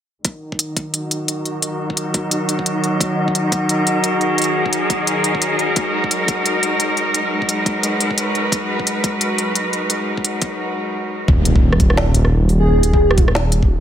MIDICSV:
0, 0, Header, 1, 7, 480
1, 0, Start_track
1, 0, Key_signature, -6, "minor"
1, 0, Tempo, 344828
1, 345, Time_signature, 4, 2, 24, 8
1, 19211, End_track
2, 0, Start_track
2, 0, Title_t, "Digital synth lead"
2, 0, Program_c, 0, 84
2, 17531, Note_on_c, 0, 68, 92
2, 17980, Note_off_c, 0, 68, 0
2, 18011, Note_on_c, 0, 68, 92
2, 18347, Note_off_c, 0, 68, 0
2, 19211, End_track
3, 0, Start_track
3, 0, Title_t, "Cello section"
3, 0, Program_c, 1, 48
3, 339, Note_on_c, 1, 51, 76
3, 565, Note_on_c, 1, 63, 82
3, 1244, Note_on_c, 1, 66, 71
3, 1954, Note_on_c, 1, 70, 69
3, 5290, Note_on_c, 1, 68, 71
3, 5421, Note_off_c, 1, 66, 0
3, 8014, Note_on_c, 1, 56, 71
3, 8022, Note_off_c, 1, 51, 0
3, 9704, Note_off_c, 1, 68, 0
3, 10167, Note_on_c, 1, 71, 66
3, 15700, Note_off_c, 1, 56, 0
3, 15701, Note_off_c, 1, 71, 0
3, 15702, Note_off_c, 1, 63, 0
3, 15704, Note_off_c, 1, 70, 0
3, 19211, End_track
4, 0, Start_track
4, 0, Title_t, "Synth drone"
4, 0, Program_c, 2, 95
4, 358, Note_on_c, 2, 54, 79
4, 360, Note_on_c, 2, 66, 75
4, 14751, Note_off_c, 2, 54, 0
4, 14753, Note_off_c, 2, 66, 0
4, 19211, End_track
5, 0, Start_track
5, 0, Title_t, "Detuned saw bass"
5, 0, Program_c, 3, 39
5, 15706, Note_on_c, 3, 27, 98
5, 16893, Note_off_c, 3, 27, 0
5, 16905, Note_on_c, 3, 27, 86
5, 18093, Note_off_c, 3, 27, 0
5, 18111, Note_on_c, 3, 27, 91
5, 19211, Note_off_c, 3, 27, 0
5, 19211, End_track
6, 0, Start_track
6, 0, Title_t, "Impact"
6, 0, Program_c, 4, 103
6, 15704, Note_on_c, 4, 60, 78
6, 17625, Note_off_c, 4, 60, 0
6, 19211, End_track
7, 0, Start_track
7, 0, Title_t, "Drums"
7, 342, Note_on_c, 9, 42, 72
7, 345, Note_on_c, 9, 36, 104
7, 481, Note_off_c, 9, 42, 0
7, 485, Note_off_c, 9, 36, 0
7, 727, Note_on_c, 9, 36, 58
7, 822, Note_on_c, 9, 42, 76
7, 866, Note_off_c, 9, 36, 0
7, 961, Note_off_c, 9, 42, 0
7, 1065, Note_on_c, 9, 42, 55
7, 1066, Note_on_c, 9, 36, 92
7, 1204, Note_off_c, 9, 42, 0
7, 1205, Note_off_c, 9, 36, 0
7, 1305, Note_on_c, 9, 42, 74
7, 1444, Note_off_c, 9, 42, 0
7, 1548, Note_on_c, 9, 42, 63
7, 1687, Note_off_c, 9, 42, 0
7, 1785, Note_on_c, 9, 42, 78
7, 1925, Note_off_c, 9, 42, 0
7, 2025, Note_on_c, 9, 42, 35
7, 2164, Note_off_c, 9, 42, 0
7, 2261, Note_on_c, 9, 42, 75
7, 2400, Note_off_c, 9, 42, 0
7, 2644, Note_on_c, 9, 36, 56
7, 2743, Note_on_c, 9, 42, 73
7, 2783, Note_off_c, 9, 36, 0
7, 2882, Note_off_c, 9, 42, 0
7, 2981, Note_on_c, 9, 42, 56
7, 2983, Note_on_c, 9, 36, 97
7, 3120, Note_off_c, 9, 42, 0
7, 3123, Note_off_c, 9, 36, 0
7, 3221, Note_on_c, 9, 42, 76
7, 3360, Note_off_c, 9, 42, 0
7, 3463, Note_on_c, 9, 42, 63
7, 3602, Note_off_c, 9, 42, 0
7, 3604, Note_on_c, 9, 36, 55
7, 3704, Note_on_c, 9, 42, 79
7, 3743, Note_off_c, 9, 36, 0
7, 3843, Note_off_c, 9, 42, 0
7, 3948, Note_on_c, 9, 42, 35
7, 4087, Note_off_c, 9, 42, 0
7, 4183, Note_on_c, 9, 36, 114
7, 4189, Note_on_c, 9, 42, 75
7, 4322, Note_off_c, 9, 36, 0
7, 4328, Note_off_c, 9, 42, 0
7, 4564, Note_on_c, 9, 36, 58
7, 4664, Note_on_c, 9, 42, 71
7, 4703, Note_off_c, 9, 36, 0
7, 4803, Note_off_c, 9, 42, 0
7, 4901, Note_on_c, 9, 42, 58
7, 4903, Note_on_c, 9, 36, 96
7, 5040, Note_off_c, 9, 42, 0
7, 5042, Note_off_c, 9, 36, 0
7, 5141, Note_on_c, 9, 42, 77
7, 5280, Note_off_c, 9, 42, 0
7, 5384, Note_on_c, 9, 42, 65
7, 5523, Note_off_c, 9, 42, 0
7, 5620, Note_on_c, 9, 42, 78
7, 5759, Note_off_c, 9, 42, 0
7, 5860, Note_on_c, 9, 42, 33
7, 5999, Note_off_c, 9, 42, 0
7, 6098, Note_on_c, 9, 42, 66
7, 6148, Note_off_c, 9, 42, 0
7, 6148, Note_on_c, 9, 42, 54
7, 6179, Note_off_c, 9, 42, 0
7, 6179, Note_on_c, 9, 42, 45
7, 6319, Note_off_c, 9, 42, 0
7, 6482, Note_on_c, 9, 36, 61
7, 6579, Note_on_c, 9, 42, 73
7, 6621, Note_off_c, 9, 36, 0
7, 6718, Note_off_c, 9, 42, 0
7, 6820, Note_on_c, 9, 36, 97
7, 6820, Note_on_c, 9, 42, 55
7, 6959, Note_off_c, 9, 42, 0
7, 6960, Note_off_c, 9, 36, 0
7, 7062, Note_on_c, 9, 42, 72
7, 7201, Note_off_c, 9, 42, 0
7, 7296, Note_on_c, 9, 42, 62
7, 7435, Note_off_c, 9, 42, 0
7, 7443, Note_on_c, 9, 36, 58
7, 7540, Note_on_c, 9, 42, 71
7, 7582, Note_off_c, 9, 36, 0
7, 7679, Note_off_c, 9, 42, 0
7, 7782, Note_on_c, 9, 42, 33
7, 7921, Note_off_c, 9, 42, 0
7, 8020, Note_on_c, 9, 42, 68
7, 8024, Note_on_c, 9, 36, 106
7, 8159, Note_off_c, 9, 42, 0
7, 8163, Note_off_c, 9, 36, 0
7, 8407, Note_on_c, 9, 36, 59
7, 8505, Note_on_c, 9, 42, 69
7, 8546, Note_off_c, 9, 36, 0
7, 8644, Note_off_c, 9, 42, 0
7, 8744, Note_on_c, 9, 42, 53
7, 8746, Note_on_c, 9, 36, 97
7, 8883, Note_off_c, 9, 42, 0
7, 8885, Note_off_c, 9, 36, 0
7, 8986, Note_on_c, 9, 42, 67
7, 9126, Note_off_c, 9, 42, 0
7, 9227, Note_on_c, 9, 42, 60
7, 9367, Note_off_c, 9, 42, 0
7, 9462, Note_on_c, 9, 42, 68
7, 9601, Note_off_c, 9, 42, 0
7, 9703, Note_on_c, 9, 42, 33
7, 9842, Note_off_c, 9, 42, 0
7, 9945, Note_on_c, 9, 42, 72
7, 10084, Note_off_c, 9, 42, 0
7, 10327, Note_on_c, 9, 36, 56
7, 10423, Note_on_c, 9, 42, 70
7, 10466, Note_off_c, 9, 36, 0
7, 10562, Note_off_c, 9, 42, 0
7, 10664, Note_on_c, 9, 36, 95
7, 10667, Note_on_c, 9, 42, 52
7, 10803, Note_off_c, 9, 36, 0
7, 10806, Note_off_c, 9, 42, 0
7, 10905, Note_on_c, 9, 42, 72
7, 11044, Note_off_c, 9, 42, 0
7, 11143, Note_on_c, 9, 42, 61
7, 11282, Note_off_c, 9, 42, 0
7, 11284, Note_on_c, 9, 36, 52
7, 11382, Note_on_c, 9, 42, 71
7, 11423, Note_off_c, 9, 36, 0
7, 11521, Note_off_c, 9, 42, 0
7, 11625, Note_on_c, 9, 42, 32
7, 11764, Note_off_c, 9, 42, 0
7, 11861, Note_on_c, 9, 36, 104
7, 11866, Note_on_c, 9, 42, 73
7, 12000, Note_off_c, 9, 36, 0
7, 12005, Note_off_c, 9, 42, 0
7, 12243, Note_on_c, 9, 36, 56
7, 12345, Note_on_c, 9, 42, 73
7, 12382, Note_off_c, 9, 36, 0
7, 12484, Note_off_c, 9, 42, 0
7, 12581, Note_on_c, 9, 36, 94
7, 12582, Note_on_c, 9, 42, 55
7, 12720, Note_off_c, 9, 36, 0
7, 12721, Note_off_c, 9, 42, 0
7, 12820, Note_on_c, 9, 42, 73
7, 12959, Note_off_c, 9, 42, 0
7, 13063, Note_on_c, 9, 42, 61
7, 13202, Note_off_c, 9, 42, 0
7, 13300, Note_on_c, 9, 42, 75
7, 13439, Note_off_c, 9, 42, 0
7, 13546, Note_on_c, 9, 42, 32
7, 13685, Note_off_c, 9, 42, 0
7, 13778, Note_on_c, 9, 42, 75
7, 13917, Note_off_c, 9, 42, 0
7, 14163, Note_on_c, 9, 36, 57
7, 14261, Note_on_c, 9, 42, 75
7, 14302, Note_off_c, 9, 36, 0
7, 14401, Note_off_c, 9, 42, 0
7, 14498, Note_on_c, 9, 42, 59
7, 14501, Note_on_c, 9, 36, 94
7, 14637, Note_off_c, 9, 42, 0
7, 14640, Note_off_c, 9, 36, 0
7, 15705, Note_on_c, 9, 36, 117
7, 15844, Note_off_c, 9, 36, 0
7, 15943, Note_on_c, 9, 42, 82
7, 16082, Note_off_c, 9, 42, 0
7, 16086, Note_on_c, 9, 36, 64
7, 16225, Note_off_c, 9, 36, 0
7, 16321, Note_on_c, 9, 37, 81
7, 16423, Note_on_c, 9, 42, 66
7, 16425, Note_on_c, 9, 36, 106
7, 16461, Note_off_c, 9, 37, 0
7, 16563, Note_off_c, 9, 42, 0
7, 16564, Note_off_c, 9, 36, 0
7, 16565, Note_on_c, 9, 37, 81
7, 16669, Note_on_c, 9, 38, 120
7, 16704, Note_off_c, 9, 37, 0
7, 16808, Note_off_c, 9, 38, 0
7, 16906, Note_on_c, 9, 42, 87
7, 17045, Note_off_c, 9, 42, 0
7, 17048, Note_on_c, 9, 37, 58
7, 17187, Note_off_c, 9, 37, 0
7, 17387, Note_on_c, 9, 46, 68
7, 17526, Note_off_c, 9, 46, 0
7, 17862, Note_on_c, 9, 42, 80
7, 18001, Note_off_c, 9, 42, 0
7, 18005, Note_on_c, 9, 36, 64
7, 18145, Note_off_c, 9, 36, 0
7, 18244, Note_on_c, 9, 37, 80
7, 18341, Note_on_c, 9, 42, 68
7, 18344, Note_on_c, 9, 36, 106
7, 18383, Note_off_c, 9, 37, 0
7, 18480, Note_off_c, 9, 42, 0
7, 18484, Note_off_c, 9, 36, 0
7, 18485, Note_on_c, 9, 37, 76
7, 18584, Note_on_c, 9, 38, 124
7, 18624, Note_off_c, 9, 37, 0
7, 18723, Note_off_c, 9, 38, 0
7, 18820, Note_on_c, 9, 42, 88
7, 18959, Note_off_c, 9, 42, 0
7, 18967, Note_on_c, 9, 36, 60
7, 19106, Note_off_c, 9, 36, 0
7, 19211, End_track
0, 0, End_of_file